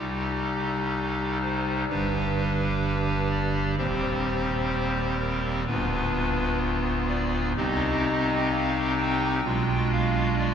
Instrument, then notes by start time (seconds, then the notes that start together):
pipe organ
0.00 C2 C3 G3 D#4 G4
1.42 C5
1.90 G1 G2 G3 D4 G4 B4
3.31 D5
3.77 D#1 D#2 G3 C4 G4 C5
5.20 A#4
5.67 D1 D2 B3 D4 F4 B4
7.09 D5
7.57 C2 C3 C4 D#4 G4 D#5
8.51 F5
8.98 G5
9.44 B1 B2 G#3 D4 F4
9.92 F5
10.39 D5